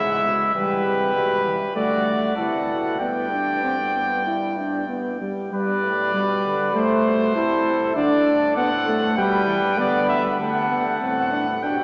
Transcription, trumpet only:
0.00 0.54 E4 medium
0.55 1.74 G4 medium
1.76 2.06 F#4 medium
2.06 2.36 F#4 medium
2.36 2.98 A4 medium
3.00 5.17 D5 medium
5.54 6.11 B4 medium
6.15 6.75 B4 medium
6.76 7.35 C5 medium
7.37 7.95 A4 medium
7.96 9.14 A4 medium
9.17 9.77 B4 medium
9.78 10.39 B4 medium
10.41 11.59 A4 medium
11.64 11.84 G4 medium

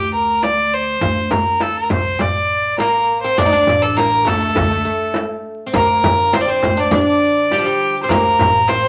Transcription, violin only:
0.00 0.11 G4 medium
0.14 0.45 A#4 medium
0.43 0.75 D5 medium
0.74 1.32 C5 medium
1.31 1.63 A#4 medium
1.62 1.79 A4 medium
1.77 1.91 A#4 medium
1.91 2.23 C5 medium
2.21 2.78 D5 medium
2.79 3.20 A#4 medium
3.22 3.39 C5 medium
3.38 3.84 D5 loud
3.82 3.98 A4 medium
3.97 4.30 A#4 medium
4.28 5.16 A4 medium
5.77 6.37 A#4 medium
6.35 6.43 C5 medium
6.41 6.51 D5 medium
6.50 6.81 C5 medium
6.80 6.92 D5 medium
6.93 7.54 D5 loud
7.53 7.96 G4 medium
8.03 8.11 C5 medium
8.09 8.70 A#4 medium
8.69 8.88 C5 medium

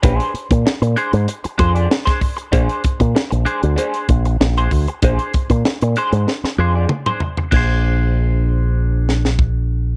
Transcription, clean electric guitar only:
0.03 0.15 C#4 loud
0.03 0.16 G4 loud
0.03 0.17 B4 loud
0.15 0.32 D4 loud
0.15 0.33 G#4 loud
0.15 0.33 C5 loud
0.52 muted clean electric guitar stroke soft
0.66 muted clean electric guitar stroke soft
0.82 muted clean electric guitar stroke medium
0.96 1.16 D4 medium
0.96 1.13 G#4 medium
0.96 1.12 C5 loud
1.13 muted clean electric guitar stroke soft
1.28 muted clean electric guitar stroke soft
1.44 muted clean electric guitar stroke soft
1.58 1.74 D4 medium
1.58 1.74 G#4 medium
1.58 1.75 C5 medium
1.75 1.89 D4 medium
1.75 1.89 G#4 medium
1.75 1.89 D5 medium
1.90 muted clean electric guitar stroke soft
2.06 2.20 D4 medium
2.06 2.21 G#4 medium
2.06 2.21 C5 medium
2.21 muted clean electric guitar stroke soft
2.37 muted clean electric guitar stroke soft
2.52 2.81 D4 loud
2.52 2.82 G#4 medium
2.52 2.82 C5 loud
3.00 muted clean electric guitar stroke soft
3.15 muted clean electric guitar stroke soft
3.31 muted clean electric guitar stroke soft
3.45 3.65 D4 medium
3.45 3.62 G#4 medium
3.45 3.61 C5 medium
3.62 muted clean electric guitar stroke soft
3.76 4.06 D4 medium
3.76 4.06 G#4 medium
3.76 4.07 C5 medium
4.09 muted clean electric guitar stroke soft
4.26 muted clean electric guitar stroke soft
4.41 muted clean electric guitar stroke soft
4.58 4.71 D4 medium
4.58 4.71 G#4 medium
4.58 4.71 C5 medium
4.72 muted clean electric guitar stroke soft
4.88 muted clean electric guitar stroke medium
5.03 5.31 D4 medium
5.03 5.32 G#4 medium
5.03 5.32 C5 loud
5.51 muted clean electric guitar stroke soft
5.66 muted clean electric guitar stroke soft
5.83 muted clean electric guitar stroke soft
5.97 6.15 D4 medium
5.97 6.13 G#4 medium
5.97 6.12 C5 loud
6.13 muted clean electric guitar stroke soft
6.27 muted clean electric guitar stroke medium
6.45 muted clean electric guitar stroke soft
6.58 6.74 D4 medium
6.58 6.74 G#4 medium
6.58 6.75 C5 medium
6.75 6.89 D4 soft
6.75 6.89 G#4 medium
6.75 6.89 D5 medium
6.90 muted clean electric guitar stroke soft
7.06 7.20 D4 medium
7.06 7.21 G#4 medium
7.06 7.21 C5 medium
7.21 muted clean electric guitar stroke soft
7.38 muted clean electric guitar stroke soft
7.51 9.96 D4 medium
7.51 9.96 G#4 medium
7.56 9.96 C5 medium

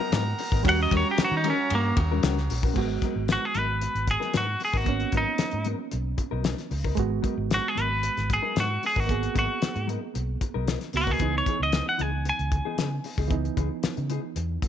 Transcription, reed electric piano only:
0.00 0.60 A#3 medium
0.00 0.61 B3 medium
0.00 0.62 F#4 medium
0.63 2.71 G3 medium
0.63 2.72 C#4 medium
0.63 2.73 F#4 medium
2.74 4.82 G#3 medium
2.74 4.83 B3 medium
2.78 4.84 F#4 medium
4.85 6.93 A#3 medium
4.85 6.94 B3 medium
4.85 6.95 C#4 medium
6.95 9.04 G#3 medium
6.95 9.05 B3 medium
6.99 9.06 F#4 medium
9.07 10.89 A#3 medium
9.07 10.90 B3 medium
9.07 10.91 G#4 medium
10.94 11.20 A#3 soft
10.94 11.19 B3 soft
10.94 11.21 F#4 medium
11.18 13.26 E3 medium
11.18 13.27 B3 medium
11.18 13.28 D#4 medium
13.28 14.68 E3 medium
13.28 14.68 B3 medium
13.32 14.68 D#4 medium

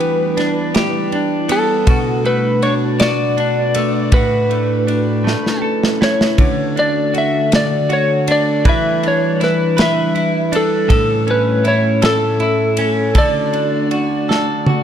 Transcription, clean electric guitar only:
0.00 1.87 E3 medium
0.00 1.49 B3 medium
0.00 0.37 D4 medium
0.00 0.73 G4 medium
0.37 1.12 D4 medium
0.75 1.87 G4 medium
1.13 2.63 D4 medium
1.49 2.24 B3 medium
1.87 4.12 B2 medium
1.87 3.00 F#4 medium
2.25 3.75 A3 medium
2.63 3.36 D4 medium
3.00 4.12 F#4 medium
3.37 4.20 D4 medium
3.76 4.49 A3 medium
4.13 5.33 A2 medium
4.13 5.33 F#4 medium
4.50 5.24 A3 medium
4.87 5.33 D4 medium
5.24 8.65 A3 medium
5.62 7.13 A4 soft
6.01 6.46 E4 medium
6.38 8.68 D3 medium
6.76 8.28 D4 medium
7.14 7.88 F#4 medium
7.89 8.73 F#4 medium
8.28 9.03 D4 medium
8.65 12.15 E3 medium
8.65 9.76 B4 medium
9.03 10.51 D4 medium
9.40 10.15 E4 medium
9.77 10.88 B4 medium
10.15 11.64 E4 medium
10.52 10.97 D4 medium
10.88 13.14 A2 medium
10.88 12.02 A4 medium
11.27 12.77 C#4 medium
11.64 12.39 E4 medium
12.02 13.15 A4 medium
12.40 13.23 E4 medium
12.79 13.23 C#4 medium
13.15 14.83 D3 medium
13.15 14.29 A4 medium
13.53 14.83 D4 medium
13.91 14.67 F#4 medium
14.29 14.83 A4 medium
14.67 14.83 F#4 medium

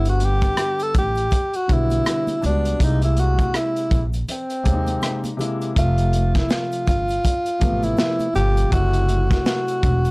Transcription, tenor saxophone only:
0.09 0.26 F#4 loud
0.24 0.84 G4 loud
0.83 0.96 A4 loud
0.98 1.57 G4 loud
1.56 1.74 F#4 loud
1.73 2.45 E4 loud
2.46 2.85 D4 medium
2.84 3.03 D#4 medium
3.05 3.21 E4 medium
3.20 3.58 F#4 medium
3.57 4.04 E4 medium
4.31 5.37 C4 medium
5.79 6.38 F4 loud
6.37 6.54 E4 medium
6.52 6.88 F4 medium
6.89 7.85 F4 medium
7.84 8.35 E4 medium
8.36 8.70 G4 loud
8.72 9.27 F#4 loud
9.32 10.11 F#4 medium

